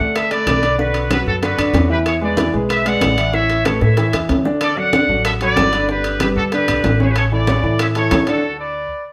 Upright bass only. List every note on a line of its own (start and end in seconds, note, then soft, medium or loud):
0.00 0.44 D2 medium
0.47 1.21 B1 medium
1.26 1.56 F#2 medium
1.58 1.73 F#2 medium
1.73 2.48 E2 loud
2.54 2.98 B1 medium
3.01 3.75 A1 medium
3.81 4.11 A2 medium
4.13 4.28 E2 medium
4.29 5.03 D2 medium
5.09 5.53 A1 medium
5.57 6.31 G1 medium
6.36 6.66 D2 medium
6.68 6.83 B1 medium
6.84 7.58 A1 medium
7.63 8.08 A2 medium
8.11 8.85 D2 medium